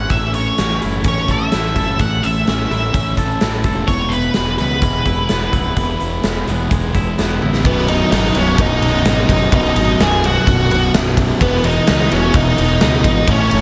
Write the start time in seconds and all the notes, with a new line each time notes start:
Already playing: E3 G#3 C#4 F#5
0.10 A1 A2 E3 A3 C#4 E5, kick, closed hi-hat
0.14 E4 A4
0.34 C#5, closed hi-hat
0.58 A1 C#4, snare, closed hi-hat
0.81 F#1 A2 E3 A3 C#4 E4 A4, closed hi-hat
1.04 A1 C#4, kick, closed hi-hat
1.08 C#5
1.17 snare
1.28 A1 A4 E5, kick, closed hi-hat
1.52 A1 A2 E3 A3 C#4 E4, snare, closed hi-hat
1.56 E4 A4
1.76 F#1 A4, kick, closed hi-hat
1.99 A1 A2 E3 A3 C#4 F#5, kick, closed hi-hat
2.03 E4 A4
2.23 A1 E5, closed hi-hat
2.47 A1 C#4, snare, closed hi-hat
2.71 A1 A2 E3 A3 C#4 E4 A4, closed hi-hat
2.93 A1 C#4, kick, closed hi-hat
3.17 A1 A4, kick, closed hi-hat
3.40 A1 A2 E3 A3 C#4 E4, snare, closed hi-hat
3.44 A4
3.64 E1 A4, kick, closed hi-hat
3.87 E1 E2 B2 E3 G#3 B3 E4 C#5, kick, closed hi-hat
4.09 B4, closed hi-hat
4.34 E1 G#3, snare, closed hi-hat
4.58 C#2 E2 B2 E3 G#3 B3 E4 B4, closed hi-hat
4.82 E1 G#3, kick, closed hi-hat
5.06 E1 E4, kick, closed hi-hat
5.29 E1 E2 B2 E3 G#3 B3 E4, snare, closed hi-hat
5.53 C#1 E4, kick, closed hi-hat
5.76 E1 E2 B2 E3 G#3 B3 E4, kick, closed hi-hat
6.00 E1, closed hi-hat
6.24 E1 G#3, snare, closed hi-hat
6.47 E1 E3 G#3 B3 E4, closed hi-hat
6.51 E2 B2
6.71 E1 G#3, kick, closed hi-hat
6.95 E1 E4, kick, closed hi-hat
7.18 E1 E2 B2 E3 G#3 B3, snare, closed hi-hat
7.23 E4
7.42 A1 E4, high tom
7.53 snare
7.64 B0 B1 F#2 B2 B3, kick, ride
7.78 snare
7.88 B1 F#2 B2 D#4, ride
8.11 G#1 B1 F#2 B2 D#4, snare, ride
8.35 B0 B1 F#2 B2 C#4, ride
8.58 B0 B1 F#2 B2 D#4, kick, ride
8.82 B0 B1 F#2 B2, ride
9.05 G#1 B1 F#2 B2, snare, ride
9.29 F#1 B1 F#2 B2, kick, ride
9.52 B0 B1 F#2 B2 D#4, kick, ride
9.65 snare
9.76 G#1 B1 F#2 B2, ride
9.99 B0 B1 F#2 B2 G#4, snare, ride
10.23 B1 F#2 B2 F#4, ride
10.47 B0 B1 F#2 B2, kick, ride
10.70 B0 B1 F#2 B2, ride
10.94 B0 B1 F#2 B2, snare, ride
11.17 B1 F#2 B2, kick, ride
11.41 E1 E2 B2 E3 B3, kick, ride
11.64 E2 B2 E3 D#4, ride
11.87 C#2 E2 B2 E3 D#4, snare, ride
12.11 E1 E2 B2 E3 C#4, ride
12.34 E1 E2 B2 E3 D#4, kick, ride
12.58 E1 E2 B2 E3, ride
12.81 C#2 E2 B2 E3, snare, ride
13.03 G#1 E2 B2 E3, kick, ride
13.27 A1 A2 E3 A3, kick, ride
13.31 C#4
13.51 F#1 A2 E3 A3, ride